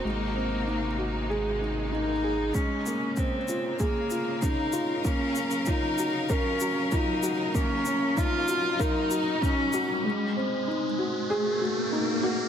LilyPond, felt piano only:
\new Staff \with { instrumentName = "Felt piano" } { \time 4/4 \key bes \minor \tempo 4 = 96 aes8 c'8 ees'8 ges'8 aes'8 ees'8 ees'8 aes'8 | aes8 bes8 des'8 f'8 aes'8 f'8 des'8 f'8 | bes8 des'8 f'8 ges'8 bes'8 ges'8 f'8 ges'8 | bes8 des'8 ees'8 ges'8 bes'8 ges'8 ees'8 ges'8 |
aes8 c'8 ees'8 ges'8 aes'8 ges'8 ees'8 ges'8 | }